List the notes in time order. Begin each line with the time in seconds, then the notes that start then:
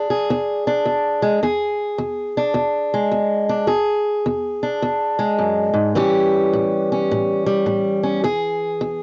Already playing: E2 D4
0.10 G#4
0.30 E2
0.67 D4
0.85 E2
1.22 G#3
1.43 E2 G#4
1.98 E2
2.37 D4
2.54 E2
2.94 G#3
3.11 E2
3.49 D4
3.67 E2 G#4
4.26 E2
4.63 D4
4.82 E2
5.19 G#3
5.39 F#2
5.74 G#2
5.95 A2 E3 G3 C#4 G4
6.53 A2
6.92 C#4
7.11 A2
7.46 G3
7.66 A2
8.03 C#4
8.24 E2 G#4
8.81 E2